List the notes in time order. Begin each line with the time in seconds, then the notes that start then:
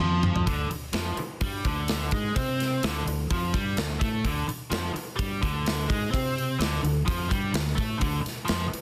0.00 F2 F3
0.23 mid tom
0.36 floor tom
0.46 D2 D3, kick, open hi-hat
0.70 muted overdriven electric guitar stroke, muted fingered electric bass stroke, open hi-hat
0.93 F2 F3, snare, open hi-hat
1.17 muted fingered electric bass stroke, muted overdriven electric guitar stroke, open hi-hat
1.41 G2 G3, kick, open hi-hat
1.65 D2 D3, kick, open hi-hat
1.88 snare, open hi-hat
2.11 G#2 G#3, kick, open hi-hat
2.36 C3 C4, kick, open hi-hat
2.60 snare, open hi-hat
2.83 D2 D3, snare, open hi-hat
3.06 D2 D3, open hi-hat
3.30 F2 F3, kick, open hi-hat
3.53 G2 G3, kick, open hi-hat
3.76 D2 D3, snare, open hi-hat
3.99 A2 A3, kick, open hi-hat
4.24 D2 D3, kick, open hi-hat
4.48 muted fingered electric bass stroke, muted overdriven electric guitar stroke, open hi-hat
4.71 F2 F3, snare, open hi-hat
4.94 muted overdriven electric guitar stroke, muted fingered electric bass stroke, open hi-hat
5.16 G2 G3, kick, open hi-hat
5.41 D2 D3, kick, open hi-hat
5.66 snare, open hi-hat
5.88 G#2 G#3, kick, open hi-hat
6.11 C3 C4, kick, open hi-hat
6.38 open hi-hat
6.59 D2 D3, snare, open hi-hat
6.83 D2 D3, open hi-hat
7.06 F2 F3, kick, open hi-hat
7.28 G2 G3, kick, open hi-hat
7.52 D2 D3, snare, open hi-hat
7.75 A2 A3, kick, open hi-hat
7.98 D2 D3, kick, open hi-hat
8.21 muted overdriven electric guitar stroke
8.26 muted fingered electric bass stroke, snare, open hi-hat
8.45 F3, open hi-hat
8.49 F2, snare
8.68 muted overdriven electric guitar stroke
8.73 muted fingered electric bass stroke, open hi-hat